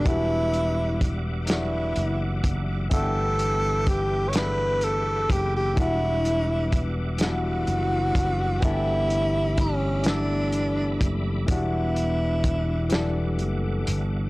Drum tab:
HH |xxxxxx|xxxxxx|xxxxxx|xxxxxx|
SD |---o--|---o--|---o--|---o--|
BD |o-o--o|o-o--o|o-o--o|o-o--o|

HH |xxxxxx|
SD |---o--|
BD |o-o---|